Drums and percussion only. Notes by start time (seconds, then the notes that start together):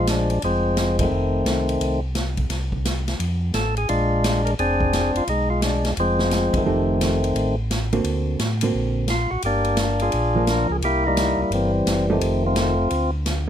0.07 snare, hi-hat pedal, ride
0.30 ride
0.42 ride
0.77 snare, hi-hat pedal, ride
0.99 kick, ride
1.46 snare, hi-hat pedal, ride
1.69 ride
1.81 ride
2.15 snare, hi-hat pedal, ride
2.37 kick, ride
2.50 snare, ride
2.72 kick
2.85 snare, hi-hat pedal, ride
3.08 snare, ride
3.20 ride
3.54 snare, hi-hat pedal, ride
3.77 ride
3.89 ride
4.24 snare, hi-hat pedal, ride
4.47 ride
4.59 ride
4.80 kick
4.93 snare, hi-hat pedal, ride
5.15 ride
5.27 ride
5.62 snare, hi-hat pedal, ride
5.85 snare, ride
5.97 ride
6.19 snare
6.31 snare, hi-hat pedal, ride
6.54 kick, ride
7.01 snare, hi-hat pedal, ride
7.24 ride
7.36 ride
7.71 snare, hi-hat pedal, ride
7.93 ride
8.04 ride
8.39 snare, hi-hat pedal, ride
8.61 ride
9.08 snare, hi-hat pedal, ride
9.42 ride
9.64 ride
9.77 snare, hi-hat pedal, ride
9.99 ride
10.12 ride
10.47 snare, hi-hat pedal, ride
10.82 ride
11.17 snare, hi-hat pedal, ride
11.52 ride
11.87 snare, hi-hat pedal, ride
12.21 ride
12.56 snare, hi-hat pedal, ride
12.90 ride
13.26 snare, hi-hat pedal, ride